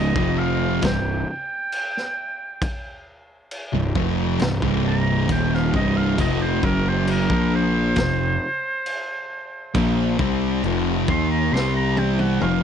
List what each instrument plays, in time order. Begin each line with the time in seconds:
Already playing: picked electric bass C#1, distorted electric guitar C#2 G#2 C#3, oboe D#5
0.16 picked electric bass F1, distorted electric guitar F2 C3 F3, kick
0.38 oboe F5
0.82 picked electric bass C1, distorted electric guitar C2 G2, oboe G5, kick, snare, crash
1.29 oboe G5
1.72 crash
1.97 snare
2.62 kick, crash
3.51 crash
3.73 picked electric bass C1, distorted electric guitar C2 G2
3.95 picked electric bass F1, distorted electric guitar F2 C3 F3, kick
4.39 picked electric bass C1, distorted electric guitar C2 G2, snare, crash
4.62 picked electric bass C1, distorted electric guitar C2 G2 C3, kick
4.87 oboe A#5
5.29 picked electric bass D#1, distorted electric guitar D#2 A#2 D#3, oboe G5, kick, crash
5.54 oboe F5, snare
5.73 picked electric bass C1, distorted electric guitar C2 G2 C3, oboe D#5, kick
5.97 oboe F5
6.18 picked electric bass F1, distorted electric guitar F2 C3 F3, oboe D#5, kick, crash
6.42 oboe C5
6.62 picked electric bass F#1, distorted electric guitar F#2 C#3 F#3, oboe A#4, kick
6.88 oboe C5
7.07 oboe A#4, crash
7.30 picked electric bass A#1, distorted electric guitar A#2 F3 A#3, kick
7.55 oboe C5
7.96 picked electric bass F1, distorted electric guitar F2 C3, kick, snare, crash
8.86 crash
9.75 picked electric bass A#1, distorted electric guitar A#2 F3 A#3, kick, crash
10.19 picked electric bass C2, distorted electric guitar C3 G3 C4, kick
10.63 picked electric bass F1, distorted electric guitar F2 C3 F3, crash
11.08 picked electric bass D#2, distorted electric guitar D#3 A#3 D#4, oboe C6, kick
11.31 oboe A#5
11.52 picked electric bass C2, distorted electric guitar C3 G3 C4, oboe C6, snare
11.75 oboe A#5
11.97 oboe G5, high tom
12.19 oboe F#5, high tom
12.41 picked electric bass F1, distorted electric guitar F2 C3 F3, oboe F5, mid tom